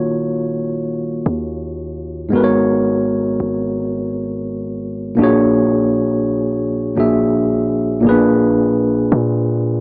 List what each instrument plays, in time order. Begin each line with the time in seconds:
Already playing: 808-style bass D#1, tine electric piano D#3 A#3 F4 F#4 C#5
1.26 808-style bass D#2
2.29 tine electric piano G#2 G#3 B3
2.33 808-style bass G#1, tine electric piano F#4 A#4 B4
2.44 tine electric piano C#5
3.40 808-style bass G#1
5.15 808-style bass A#1, tine electric piano A#2 A#3 D4
5.20 tine electric piano F#4 G#4 C#5
6.96 808-style bass A#1, tine electric piano A#2 A#3 D4 F#4 G#4
7.00 tine electric piano E5
8.00 tine electric piano A#2 A#3
8.04 808-style bass A#1, tine electric piano B3 G#4
8.09 tine electric piano D4 B4
9.12 808-style bass A#2